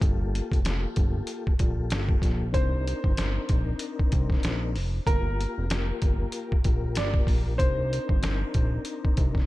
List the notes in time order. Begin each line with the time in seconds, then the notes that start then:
0.00 G1 A#3 F4 G4 A4, kick, closed hi-hat
0.35 closed hi-hat
0.52 F1, kick, closed hi-hat
0.64 A#3 F4 G4 A4, snare, closed hi-hat
0.96 G1, kick, closed hi-hat
1.27 closed hi-hat
1.47 kick
1.59 A#1 A#3 F4 G4 A4, kick, closed hi-hat
1.90 G1, snare, closed hi-hat
2.09 kick
2.22 A#1, kick, snare, closed hi-hat
2.52 C2 C4 D4 D#4 A#4 C5, kick, closed hi-hat
2.88 closed hi-hat
3.04 G1, kick
3.16 C4 D4 D#4 A#4, snare, closed hi-hat
3.49 A#1, kick, closed hi-hat
3.79 closed hi-hat
3.99 kick
4.12 C2, kick, closed hi-hat
4.30 kick, snare
4.43 A#1, snare, closed hi-hat
4.76 F1, open hi-hat
5.05 G1 A#3 F4 G4 A#4, kick, closed hi-hat
5.41 closed hi-hat
5.58 F1
5.69 A#3 F4 G4 A#4, snare, closed hi-hat
6.02 G1, kick, closed hi-hat
6.32 closed hi-hat
6.52 kick
6.64 A#1 A#3 F4 G4 A#4, kick, closed hi-hat
6.95 G1 D5, snare, closed hi-hat
7.14 kick
7.27 A#1, kick, open hi-hat
7.56 C2 C4 D4 D#4 A#4 C5, kick, closed hi-hat
7.93 closed hi-hat
8.09 G1, kick
8.21 C4 D4 D#4 A#4, snare, closed hi-hat
8.54 A#1, kick, closed hi-hat
8.85 closed hi-hat
9.05 kick
9.17 C2, kick, closed hi-hat
9.35 kick, snare